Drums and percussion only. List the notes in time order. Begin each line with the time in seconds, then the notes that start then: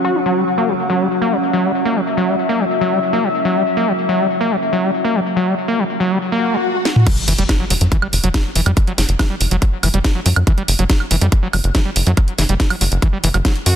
6.85 snare
6.96 mid tom
7.07 kick, closed hi-hat, crash
7.17 closed hi-hat
7.28 open hi-hat
7.38 closed hi-hat
7.49 kick, snare, closed hi-hat, high woodblock
7.70 open hi-hat
7.81 closed hi-hat
7.92 kick, closed hi-hat
8.02 high woodblock
8.13 open hi-hat
8.24 closed hi-hat
8.34 kick, snare, closed hi-hat
8.56 open hi-hat
8.66 closed hi-hat, high woodblock
8.77 kick, closed hi-hat
8.87 closed hi-hat
8.98 snare, open hi-hat
9.09 closed hi-hat
9.19 kick, snare, closed hi-hat, high woodblock
9.41 open hi-hat
9.51 closed hi-hat
9.62 kick, closed hi-hat
9.83 open hi-hat, high woodblock
9.94 closed hi-hat
10.04 kick, snare, closed hi-hat
10.26 open hi-hat
10.36 closed hi-hat, high woodblock
10.47 kick, closed hi-hat
10.58 closed hi-hat
10.68 open hi-hat
10.79 closed hi-hat
10.90 kick, snare, closed hi-hat
11.00 high woodblock
11.11 open hi-hat
11.21 closed hi-hat
11.32 kick, closed hi-hat
11.53 open hi-hat, high woodblock
11.64 closed hi-hat
11.75 kick, snare, closed hi-hat
11.96 open hi-hat
12.07 closed hi-hat
12.17 kick, closed hi-hat, high woodblock
12.28 closed hi-hat
12.38 snare, open hi-hat
12.49 closed hi-hat
12.60 kick, snare, closed hi-hat
12.70 open hi-hat, high woodblock
12.81 open hi-hat
12.92 closed hi-hat
13.02 kick, closed hi-hat
13.24 open hi-hat
13.34 closed hi-hat, high woodblock
13.45 kick, snare, closed hi-hat
13.56 closed hi-hat
13.66 open hi-hat